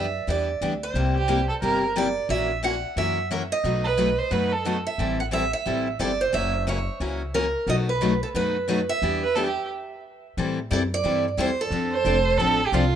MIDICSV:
0, 0, Header, 1, 6, 480
1, 0, Start_track
1, 0, Key_signature, 1, "minor"
1, 0, Tempo, 336323
1, 1356, Time_signature, 4, 2, 24, 8
1, 18491, End_track
2, 0, Start_track
2, 0, Title_t, "Steel-string acoustic guitar"
2, 0, Program_c, 0, 25
2, 0, Note_on_c, 0, 76, 73
2, 422, Note_off_c, 0, 76, 0
2, 431, Note_on_c, 0, 74, 74
2, 861, Note_off_c, 0, 74, 0
2, 1189, Note_on_c, 0, 72, 76
2, 2826, Note_on_c, 0, 74, 86
2, 2856, Note_off_c, 0, 72, 0
2, 3258, Note_off_c, 0, 74, 0
2, 3285, Note_on_c, 0, 76, 94
2, 3766, Note_off_c, 0, 76, 0
2, 3772, Note_on_c, 0, 78, 84
2, 4245, Note_off_c, 0, 78, 0
2, 4250, Note_on_c, 0, 76, 77
2, 4690, Note_off_c, 0, 76, 0
2, 5024, Note_on_c, 0, 75, 89
2, 6939, Note_off_c, 0, 75, 0
2, 6945, Note_on_c, 0, 76, 82
2, 7383, Note_off_c, 0, 76, 0
2, 7422, Note_on_c, 0, 78, 74
2, 7493, Note_off_c, 0, 78, 0
2, 7611, Note_on_c, 0, 76, 79
2, 7875, Note_off_c, 0, 76, 0
2, 7897, Note_on_c, 0, 76, 79
2, 8564, Note_off_c, 0, 76, 0
2, 8570, Note_on_c, 0, 74, 83
2, 8862, Note_on_c, 0, 72, 74
2, 8863, Note_off_c, 0, 74, 0
2, 9032, Note_off_c, 0, 72, 0
2, 9047, Note_on_c, 0, 76, 86
2, 9489, Note_off_c, 0, 76, 0
2, 9545, Note_on_c, 0, 73, 66
2, 10249, Note_off_c, 0, 73, 0
2, 10482, Note_on_c, 0, 70, 80
2, 10975, Note_off_c, 0, 70, 0
2, 10982, Note_on_c, 0, 75, 88
2, 11058, Note_off_c, 0, 75, 0
2, 11263, Note_on_c, 0, 71, 68
2, 11703, Note_off_c, 0, 71, 0
2, 11745, Note_on_c, 0, 69, 68
2, 11816, Note_off_c, 0, 69, 0
2, 11931, Note_on_c, 0, 71, 72
2, 12693, Note_on_c, 0, 76, 79
2, 12719, Note_off_c, 0, 71, 0
2, 14265, Note_off_c, 0, 76, 0
2, 15317, Note_on_c, 0, 74, 89
2, 15391, Note_off_c, 0, 74, 0
2, 15614, Note_on_c, 0, 74, 88
2, 16040, Note_off_c, 0, 74, 0
2, 16276, Note_on_c, 0, 72, 85
2, 16556, Note_off_c, 0, 72, 0
2, 16568, Note_on_c, 0, 69, 75
2, 18411, Note_off_c, 0, 69, 0
2, 18491, End_track
3, 0, Start_track
3, 0, Title_t, "Violin"
3, 0, Program_c, 1, 40
3, 1646, Note_on_c, 1, 67, 77
3, 2092, Note_off_c, 1, 67, 0
3, 2119, Note_on_c, 1, 69, 77
3, 2206, Note_off_c, 1, 69, 0
3, 2307, Note_on_c, 1, 70, 89
3, 2669, Note_off_c, 1, 70, 0
3, 5478, Note_on_c, 1, 71, 80
3, 5969, Note_on_c, 1, 72, 77
3, 5990, Note_off_c, 1, 71, 0
3, 6154, Note_on_c, 1, 71, 84
3, 6175, Note_off_c, 1, 72, 0
3, 6449, Note_on_c, 1, 69, 75
3, 6470, Note_off_c, 1, 71, 0
3, 6783, Note_off_c, 1, 69, 0
3, 13174, Note_on_c, 1, 71, 82
3, 13346, Note_on_c, 1, 69, 79
3, 13367, Note_off_c, 1, 71, 0
3, 13498, Note_off_c, 1, 69, 0
3, 13504, Note_on_c, 1, 67, 66
3, 13816, Note_off_c, 1, 67, 0
3, 17009, Note_on_c, 1, 72, 96
3, 17661, Note_on_c, 1, 69, 93
3, 17683, Note_off_c, 1, 72, 0
3, 18068, Note_on_c, 1, 67, 80
3, 18089, Note_off_c, 1, 69, 0
3, 18178, Note_on_c, 1, 65, 80
3, 18199, Note_off_c, 1, 67, 0
3, 18491, Note_off_c, 1, 65, 0
3, 18491, End_track
4, 0, Start_track
4, 0, Title_t, "Steel-string acoustic guitar"
4, 0, Program_c, 2, 25
4, 388, Note_on_c, 2, 52, 64
4, 399, Note_on_c, 2, 55, 67
4, 401, Note_on_c, 2, 62, 57
4, 405, Note_on_c, 2, 64, 66
4, 408, Note_on_c, 2, 71, 60
4, 684, Note_off_c, 2, 52, 0
4, 689, Note_off_c, 2, 55, 0
4, 690, Note_off_c, 2, 62, 0
4, 692, Note_off_c, 2, 64, 0
4, 693, Note_off_c, 2, 71, 0
4, 880, Note_on_c, 2, 52, 77
4, 885, Note_on_c, 2, 55, 73
4, 886, Note_on_c, 2, 62, 69
4, 893, Note_on_c, 2, 71, 71
4, 894, Note_on_c, 2, 64, 67
4, 1033, Note_off_c, 2, 52, 0
4, 1035, Note_off_c, 2, 55, 0
4, 1036, Note_off_c, 2, 62, 0
4, 1039, Note_off_c, 2, 71, 0
4, 1040, Note_off_c, 2, 64, 0
4, 1360, Note_on_c, 2, 48, 60
4, 1360, Note_on_c, 2, 55, 52
4, 1365, Note_on_c, 2, 58, 59
4, 1368, Note_on_c, 2, 64, 56
4, 1369, Note_on_c, 2, 67, 66
4, 1649, Note_off_c, 2, 55, 0
4, 1650, Note_off_c, 2, 48, 0
4, 1652, Note_off_c, 2, 58, 0
4, 1654, Note_off_c, 2, 64, 0
4, 1654, Note_off_c, 2, 67, 0
4, 1828, Note_on_c, 2, 48, 70
4, 1833, Note_on_c, 2, 55, 68
4, 1834, Note_on_c, 2, 58, 74
4, 1837, Note_on_c, 2, 67, 79
4, 1840, Note_on_c, 2, 64, 67
4, 1987, Note_off_c, 2, 48, 0
4, 1989, Note_off_c, 2, 55, 0
4, 1990, Note_off_c, 2, 58, 0
4, 1991, Note_off_c, 2, 67, 0
4, 1993, Note_off_c, 2, 64, 0
4, 2324, Note_on_c, 2, 48, 57
4, 2328, Note_on_c, 2, 55, 57
4, 2336, Note_on_c, 2, 58, 66
4, 2337, Note_on_c, 2, 64, 70
4, 2345, Note_on_c, 2, 67, 64
4, 2612, Note_off_c, 2, 48, 0
4, 2614, Note_off_c, 2, 55, 0
4, 2618, Note_off_c, 2, 58, 0
4, 2618, Note_off_c, 2, 64, 0
4, 2622, Note_off_c, 2, 67, 0
4, 2814, Note_on_c, 2, 55, 71
4, 2819, Note_on_c, 2, 48, 75
4, 2821, Note_on_c, 2, 58, 75
4, 2822, Note_on_c, 2, 67, 76
4, 2827, Note_on_c, 2, 64, 82
4, 2960, Note_off_c, 2, 55, 0
4, 2962, Note_off_c, 2, 48, 0
4, 2964, Note_off_c, 2, 58, 0
4, 2964, Note_off_c, 2, 67, 0
4, 2966, Note_off_c, 2, 64, 0
4, 3294, Note_on_c, 2, 52, 56
4, 3299, Note_on_c, 2, 58, 69
4, 3305, Note_on_c, 2, 61, 63
4, 3308, Note_on_c, 2, 66, 58
4, 3311, Note_on_c, 2, 70, 65
4, 3577, Note_off_c, 2, 52, 0
4, 3579, Note_off_c, 2, 58, 0
4, 3582, Note_off_c, 2, 61, 0
4, 3584, Note_off_c, 2, 66, 0
4, 3586, Note_off_c, 2, 70, 0
4, 3771, Note_on_c, 2, 52, 75
4, 3775, Note_on_c, 2, 58, 67
4, 3778, Note_on_c, 2, 66, 74
4, 3781, Note_on_c, 2, 61, 70
4, 3788, Note_on_c, 2, 70, 74
4, 3919, Note_off_c, 2, 52, 0
4, 3920, Note_off_c, 2, 58, 0
4, 3922, Note_off_c, 2, 66, 0
4, 3924, Note_off_c, 2, 61, 0
4, 3927, Note_off_c, 2, 70, 0
4, 4248, Note_on_c, 2, 52, 63
4, 4251, Note_on_c, 2, 61, 61
4, 4254, Note_on_c, 2, 58, 62
4, 4260, Note_on_c, 2, 66, 67
4, 4263, Note_on_c, 2, 70, 66
4, 4534, Note_off_c, 2, 52, 0
4, 4535, Note_off_c, 2, 61, 0
4, 4537, Note_off_c, 2, 58, 0
4, 4540, Note_off_c, 2, 66, 0
4, 4542, Note_off_c, 2, 70, 0
4, 4734, Note_on_c, 2, 52, 68
4, 4742, Note_on_c, 2, 70, 87
4, 4743, Note_on_c, 2, 58, 75
4, 4744, Note_on_c, 2, 61, 81
4, 4745, Note_on_c, 2, 66, 73
4, 4880, Note_off_c, 2, 52, 0
4, 4884, Note_off_c, 2, 70, 0
4, 4885, Note_off_c, 2, 58, 0
4, 4885, Note_off_c, 2, 61, 0
4, 4885, Note_off_c, 2, 66, 0
4, 5207, Note_on_c, 2, 47, 57
4, 5209, Note_on_c, 2, 54, 58
4, 5209, Note_on_c, 2, 57, 57
4, 5211, Note_on_c, 2, 63, 67
4, 5212, Note_on_c, 2, 71, 70
4, 5214, Note_on_c, 2, 66, 64
4, 5494, Note_off_c, 2, 47, 0
4, 5495, Note_off_c, 2, 54, 0
4, 5495, Note_off_c, 2, 57, 0
4, 5495, Note_off_c, 2, 63, 0
4, 5496, Note_off_c, 2, 71, 0
4, 5497, Note_off_c, 2, 66, 0
4, 5688, Note_on_c, 2, 54, 66
4, 5690, Note_on_c, 2, 47, 70
4, 5692, Note_on_c, 2, 57, 70
4, 5693, Note_on_c, 2, 63, 79
4, 5696, Note_on_c, 2, 66, 76
4, 5704, Note_on_c, 2, 71, 83
4, 5837, Note_off_c, 2, 54, 0
4, 5838, Note_off_c, 2, 47, 0
4, 5839, Note_off_c, 2, 57, 0
4, 5840, Note_off_c, 2, 63, 0
4, 5841, Note_off_c, 2, 66, 0
4, 5845, Note_off_c, 2, 71, 0
4, 6159, Note_on_c, 2, 54, 58
4, 6160, Note_on_c, 2, 47, 60
4, 6165, Note_on_c, 2, 63, 55
4, 6168, Note_on_c, 2, 57, 66
4, 6169, Note_on_c, 2, 66, 68
4, 6175, Note_on_c, 2, 71, 77
4, 6450, Note_off_c, 2, 47, 0
4, 6450, Note_off_c, 2, 54, 0
4, 6453, Note_off_c, 2, 63, 0
4, 6454, Note_off_c, 2, 57, 0
4, 6455, Note_off_c, 2, 66, 0
4, 6458, Note_off_c, 2, 71, 0
4, 6634, Note_on_c, 2, 47, 70
4, 6640, Note_on_c, 2, 54, 76
4, 6644, Note_on_c, 2, 57, 73
4, 6645, Note_on_c, 2, 63, 73
4, 6649, Note_on_c, 2, 66, 76
4, 6650, Note_on_c, 2, 71, 79
4, 6791, Note_off_c, 2, 47, 0
4, 6793, Note_off_c, 2, 54, 0
4, 6795, Note_off_c, 2, 57, 0
4, 6796, Note_off_c, 2, 63, 0
4, 6798, Note_off_c, 2, 66, 0
4, 6798, Note_off_c, 2, 71, 0
4, 7124, Note_on_c, 2, 55, 58
4, 7126, Note_on_c, 2, 52, 56
4, 7132, Note_on_c, 2, 64, 58
4, 7136, Note_on_c, 2, 60, 58
4, 7140, Note_on_c, 2, 69, 71
4, 7413, Note_off_c, 2, 52, 0
4, 7413, Note_off_c, 2, 55, 0
4, 7417, Note_off_c, 2, 64, 0
4, 7419, Note_off_c, 2, 60, 0
4, 7420, Note_off_c, 2, 69, 0
4, 7582, Note_on_c, 2, 52, 66
4, 7588, Note_on_c, 2, 55, 73
4, 7592, Note_on_c, 2, 60, 64
4, 7598, Note_on_c, 2, 64, 82
4, 7600, Note_on_c, 2, 69, 80
4, 7744, Note_off_c, 2, 52, 0
4, 7747, Note_off_c, 2, 55, 0
4, 7750, Note_off_c, 2, 60, 0
4, 7752, Note_off_c, 2, 64, 0
4, 7754, Note_off_c, 2, 69, 0
4, 8092, Note_on_c, 2, 55, 55
4, 8099, Note_on_c, 2, 52, 62
4, 8101, Note_on_c, 2, 64, 61
4, 8102, Note_on_c, 2, 60, 65
4, 8111, Note_on_c, 2, 69, 61
4, 8377, Note_off_c, 2, 55, 0
4, 8380, Note_off_c, 2, 52, 0
4, 8381, Note_off_c, 2, 64, 0
4, 8382, Note_off_c, 2, 60, 0
4, 8386, Note_off_c, 2, 69, 0
4, 8565, Note_on_c, 2, 52, 70
4, 8570, Note_on_c, 2, 60, 73
4, 8575, Note_on_c, 2, 55, 69
4, 8577, Note_on_c, 2, 64, 82
4, 8585, Note_on_c, 2, 69, 75
4, 8716, Note_off_c, 2, 52, 0
4, 8719, Note_off_c, 2, 60, 0
4, 8721, Note_off_c, 2, 55, 0
4, 8722, Note_off_c, 2, 64, 0
4, 8726, Note_off_c, 2, 69, 0
4, 9042, Note_on_c, 2, 54, 50
4, 9047, Note_on_c, 2, 61, 55
4, 9052, Note_on_c, 2, 64, 62
4, 9055, Note_on_c, 2, 70, 73
4, 9332, Note_off_c, 2, 54, 0
4, 9334, Note_off_c, 2, 61, 0
4, 9337, Note_off_c, 2, 64, 0
4, 9338, Note_off_c, 2, 70, 0
4, 9527, Note_on_c, 2, 54, 75
4, 9529, Note_on_c, 2, 61, 73
4, 9529, Note_on_c, 2, 64, 75
4, 9538, Note_on_c, 2, 70, 81
4, 9677, Note_off_c, 2, 54, 0
4, 9678, Note_off_c, 2, 64, 0
4, 9679, Note_off_c, 2, 61, 0
4, 9683, Note_off_c, 2, 70, 0
4, 10002, Note_on_c, 2, 54, 61
4, 10010, Note_on_c, 2, 64, 65
4, 10011, Note_on_c, 2, 61, 59
4, 10015, Note_on_c, 2, 70, 66
4, 10292, Note_off_c, 2, 54, 0
4, 10296, Note_off_c, 2, 64, 0
4, 10297, Note_off_c, 2, 61, 0
4, 10299, Note_off_c, 2, 70, 0
4, 10479, Note_on_c, 2, 54, 64
4, 10483, Note_on_c, 2, 61, 70
4, 10486, Note_on_c, 2, 64, 66
4, 10486, Note_on_c, 2, 70, 80
4, 10634, Note_off_c, 2, 54, 0
4, 10636, Note_off_c, 2, 61, 0
4, 10637, Note_off_c, 2, 64, 0
4, 10637, Note_off_c, 2, 70, 0
4, 10947, Note_on_c, 2, 47, 60
4, 10953, Note_on_c, 2, 54, 65
4, 10956, Note_on_c, 2, 57, 55
4, 10958, Note_on_c, 2, 63, 66
4, 10958, Note_on_c, 2, 66, 66
4, 10960, Note_on_c, 2, 71, 55
4, 11245, Note_off_c, 2, 47, 0
4, 11248, Note_off_c, 2, 54, 0
4, 11249, Note_off_c, 2, 57, 0
4, 11250, Note_off_c, 2, 63, 0
4, 11250, Note_off_c, 2, 66, 0
4, 11252, Note_off_c, 2, 71, 0
4, 11429, Note_on_c, 2, 47, 80
4, 11430, Note_on_c, 2, 54, 76
4, 11431, Note_on_c, 2, 63, 81
4, 11435, Note_on_c, 2, 57, 76
4, 11435, Note_on_c, 2, 66, 77
4, 11439, Note_on_c, 2, 71, 82
4, 11589, Note_off_c, 2, 47, 0
4, 11590, Note_off_c, 2, 54, 0
4, 11590, Note_off_c, 2, 63, 0
4, 11592, Note_off_c, 2, 57, 0
4, 11592, Note_off_c, 2, 66, 0
4, 11594, Note_off_c, 2, 71, 0
4, 11918, Note_on_c, 2, 54, 59
4, 11922, Note_on_c, 2, 47, 72
4, 11923, Note_on_c, 2, 57, 60
4, 11928, Note_on_c, 2, 66, 74
4, 11929, Note_on_c, 2, 63, 67
4, 11937, Note_on_c, 2, 71, 64
4, 12211, Note_off_c, 2, 54, 0
4, 12213, Note_off_c, 2, 47, 0
4, 12213, Note_off_c, 2, 57, 0
4, 12216, Note_off_c, 2, 63, 0
4, 12216, Note_off_c, 2, 66, 0
4, 12220, Note_off_c, 2, 71, 0
4, 12408, Note_on_c, 2, 47, 69
4, 12412, Note_on_c, 2, 54, 70
4, 12419, Note_on_c, 2, 63, 76
4, 12421, Note_on_c, 2, 71, 68
4, 12422, Note_on_c, 2, 57, 78
4, 12427, Note_on_c, 2, 66, 77
4, 12559, Note_off_c, 2, 47, 0
4, 12561, Note_off_c, 2, 54, 0
4, 12564, Note_off_c, 2, 63, 0
4, 12565, Note_off_c, 2, 71, 0
4, 12566, Note_off_c, 2, 57, 0
4, 12568, Note_off_c, 2, 66, 0
4, 12884, Note_on_c, 2, 52, 64
4, 12896, Note_on_c, 2, 62, 62
4, 12897, Note_on_c, 2, 55, 60
4, 12903, Note_on_c, 2, 64, 66
4, 12906, Note_on_c, 2, 71, 61
4, 13174, Note_off_c, 2, 52, 0
4, 13180, Note_off_c, 2, 62, 0
4, 13181, Note_off_c, 2, 55, 0
4, 13184, Note_off_c, 2, 64, 0
4, 13185, Note_off_c, 2, 71, 0
4, 13365, Note_on_c, 2, 52, 67
4, 13376, Note_on_c, 2, 62, 66
4, 13377, Note_on_c, 2, 55, 74
4, 13381, Note_on_c, 2, 71, 78
4, 13383, Note_on_c, 2, 64, 70
4, 13517, Note_off_c, 2, 52, 0
4, 13523, Note_off_c, 2, 62, 0
4, 13524, Note_off_c, 2, 55, 0
4, 13526, Note_off_c, 2, 71, 0
4, 13527, Note_off_c, 2, 64, 0
4, 14806, Note_on_c, 2, 52, 54
4, 14814, Note_on_c, 2, 55, 73
4, 14814, Note_on_c, 2, 64, 64
4, 14815, Note_on_c, 2, 60, 59
4, 14818, Note_on_c, 2, 69, 65
4, 15095, Note_off_c, 2, 52, 0
4, 15099, Note_off_c, 2, 55, 0
4, 15099, Note_off_c, 2, 60, 0
4, 15099, Note_off_c, 2, 64, 0
4, 15101, Note_off_c, 2, 69, 0
4, 15279, Note_on_c, 2, 52, 71
4, 15279, Note_on_c, 2, 55, 82
4, 15282, Note_on_c, 2, 60, 87
4, 15286, Note_on_c, 2, 69, 81
4, 15290, Note_on_c, 2, 64, 77
4, 15435, Note_off_c, 2, 52, 0
4, 15435, Note_off_c, 2, 55, 0
4, 15436, Note_off_c, 2, 60, 0
4, 15438, Note_off_c, 2, 69, 0
4, 15440, Note_off_c, 2, 64, 0
4, 15748, Note_on_c, 2, 52, 61
4, 15751, Note_on_c, 2, 55, 60
4, 15752, Note_on_c, 2, 60, 69
4, 15753, Note_on_c, 2, 64, 63
4, 15765, Note_on_c, 2, 69, 74
4, 16046, Note_off_c, 2, 52, 0
4, 16047, Note_off_c, 2, 55, 0
4, 16048, Note_off_c, 2, 60, 0
4, 16049, Note_off_c, 2, 64, 0
4, 16055, Note_off_c, 2, 69, 0
4, 16233, Note_on_c, 2, 52, 73
4, 16238, Note_on_c, 2, 60, 76
4, 16240, Note_on_c, 2, 55, 72
4, 16245, Note_on_c, 2, 69, 83
4, 16249, Note_on_c, 2, 64, 79
4, 16392, Note_off_c, 2, 52, 0
4, 16394, Note_off_c, 2, 60, 0
4, 16395, Note_off_c, 2, 55, 0
4, 16398, Note_off_c, 2, 69, 0
4, 16399, Note_off_c, 2, 64, 0
4, 16717, Note_on_c, 2, 60, 68
4, 16718, Note_on_c, 2, 53, 55
4, 16726, Note_on_c, 2, 62, 64
4, 16732, Note_on_c, 2, 69, 66
4, 17010, Note_off_c, 2, 60, 0
4, 17011, Note_off_c, 2, 53, 0
4, 17015, Note_off_c, 2, 62, 0
4, 17018, Note_off_c, 2, 69, 0
4, 17202, Note_on_c, 2, 53, 69
4, 17208, Note_on_c, 2, 60, 82
4, 17209, Note_on_c, 2, 62, 73
4, 17212, Note_on_c, 2, 69, 76
4, 17356, Note_off_c, 2, 53, 0
4, 17358, Note_off_c, 2, 60, 0
4, 17359, Note_off_c, 2, 62, 0
4, 17361, Note_off_c, 2, 69, 0
4, 17695, Note_on_c, 2, 53, 71
4, 17703, Note_on_c, 2, 60, 66
4, 17703, Note_on_c, 2, 69, 77
4, 17710, Note_on_c, 2, 62, 77
4, 17979, Note_off_c, 2, 53, 0
4, 17983, Note_off_c, 2, 60, 0
4, 17983, Note_off_c, 2, 69, 0
4, 17986, Note_off_c, 2, 62, 0
4, 18163, Note_on_c, 2, 53, 73
4, 18176, Note_on_c, 2, 60, 72
4, 18177, Note_on_c, 2, 69, 88
4, 18182, Note_on_c, 2, 62, 85
4, 18316, Note_off_c, 2, 53, 0
4, 18322, Note_off_c, 2, 60, 0
4, 18323, Note_off_c, 2, 69, 0
4, 18325, Note_off_c, 2, 62, 0
4, 18491, End_track
5, 0, Start_track
5, 0, Title_t, "Steel-string acoustic guitar"
5, 0, Program_c, 3, 25
5, 400, Note_on_c, 3, 59, 58
5, 409, Note_on_c, 3, 67, 71
5, 690, Note_off_c, 3, 59, 0
5, 694, Note_off_c, 3, 67, 0
5, 887, Note_on_c, 3, 59, 81
5, 892, Note_on_c, 3, 67, 81
5, 1036, Note_off_c, 3, 59, 0
5, 1039, Note_off_c, 3, 67, 0
5, 9028, Note_on_c, 3, 49, 66
5, 9028, Note_on_c, 3, 52, 55
5, 9034, Note_on_c, 3, 58, 68
5, 9046, Note_on_c, 3, 66, 71
5, 9325, Note_off_c, 3, 49, 0
5, 9325, Note_off_c, 3, 52, 0
5, 9328, Note_off_c, 3, 58, 0
5, 9334, Note_off_c, 3, 66, 0
5, 9517, Note_on_c, 3, 49, 72
5, 9518, Note_on_c, 3, 52, 75
5, 9523, Note_on_c, 3, 58, 78
5, 9536, Note_on_c, 3, 66, 89
5, 9673, Note_off_c, 3, 49, 0
5, 9673, Note_off_c, 3, 52, 0
5, 9675, Note_off_c, 3, 58, 0
5, 9682, Note_off_c, 3, 66, 0
5, 9996, Note_on_c, 3, 49, 59
5, 9997, Note_on_c, 3, 52, 62
5, 10005, Note_on_c, 3, 58, 66
5, 10012, Note_on_c, 3, 66, 68
5, 10289, Note_off_c, 3, 49, 0
5, 10290, Note_off_c, 3, 52, 0
5, 10294, Note_off_c, 3, 58, 0
5, 10297, Note_off_c, 3, 66, 0
5, 10479, Note_on_c, 3, 52, 72
5, 10480, Note_on_c, 3, 49, 83
5, 10489, Note_on_c, 3, 58, 85
5, 10490, Note_on_c, 3, 66, 87
5, 10634, Note_off_c, 3, 49, 0
5, 10634, Note_off_c, 3, 52, 0
5, 10639, Note_off_c, 3, 58, 0
5, 10639, Note_off_c, 3, 66, 0
5, 12888, Note_on_c, 3, 59, 72
5, 12894, Note_on_c, 3, 67, 72
5, 13176, Note_off_c, 3, 59, 0
5, 13179, Note_off_c, 3, 67, 0
5, 13359, Note_on_c, 3, 59, 70
5, 13370, Note_on_c, 3, 67, 91
5, 13515, Note_off_c, 3, 59, 0
5, 13520, Note_off_c, 3, 67, 0
5, 18491, End_track
6, 0, Start_track
6, 0, Title_t, "Upright bass"
6, 0, Program_c, 4, 32
6, 0, Note_on_c, 4, 42, 71
6, 316, Note_off_c, 4, 42, 0
6, 392, Note_on_c, 4, 40, 67
6, 802, Note_off_c, 4, 40, 0
6, 874, Note_on_c, 4, 38, 64
6, 1283, Note_off_c, 4, 38, 0
6, 1343, Note_on_c, 4, 36, 82
6, 2116, Note_off_c, 4, 36, 0
6, 2313, Note_on_c, 4, 31, 73
6, 3082, Note_off_c, 4, 31, 0
6, 3267, Note_on_c, 4, 34, 78
6, 4039, Note_off_c, 4, 34, 0
6, 4229, Note_on_c, 4, 42, 68
6, 5000, Note_off_c, 4, 42, 0
6, 5191, Note_on_c, 4, 35, 80
6, 5962, Note_off_c, 4, 35, 0
6, 6148, Note_on_c, 4, 42, 68
6, 6920, Note_off_c, 4, 42, 0
6, 7111, Note_on_c, 4, 33, 77
6, 7881, Note_off_c, 4, 33, 0
6, 8083, Note_on_c, 4, 33, 66
6, 8489, Note_off_c, 4, 33, 0
6, 8556, Note_on_c, 4, 31, 75
6, 8965, Note_off_c, 4, 31, 0
6, 9037, Note_on_c, 4, 30, 75
6, 9805, Note_off_c, 4, 30, 0
6, 9992, Note_on_c, 4, 37, 75
6, 10763, Note_off_c, 4, 37, 0
6, 10941, Note_on_c, 4, 35, 75
6, 11717, Note_off_c, 4, 35, 0
6, 11909, Note_on_c, 4, 42, 71
6, 12682, Note_off_c, 4, 42, 0
6, 12871, Note_on_c, 4, 40, 80
6, 13643, Note_off_c, 4, 40, 0
6, 14804, Note_on_c, 4, 45, 73
6, 15268, Note_off_c, 4, 45, 0
6, 15286, Note_on_c, 4, 42, 85
6, 15749, Note_off_c, 4, 42, 0
6, 15760, Note_on_c, 4, 43, 73
6, 16226, Note_off_c, 4, 43, 0
6, 16234, Note_on_c, 4, 40, 89
6, 16696, Note_off_c, 4, 40, 0
6, 16705, Note_on_c, 4, 41, 81
6, 17177, Note_off_c, 4, 41, 0
6, 17195, Note_on_c, 4, 29, 87
6, 17662, Note_off_c, 4, 29, 0
6, 17668, Note_on_c, 4, 33, 68
6, 18139, Note_off_c, 4, 33, 0
6, 18159, Note_on_c, 4, 36, 82
6, 18491, Note_off_c, 4, 36, 0
6, 18491, End_track
0, 0, End_of_file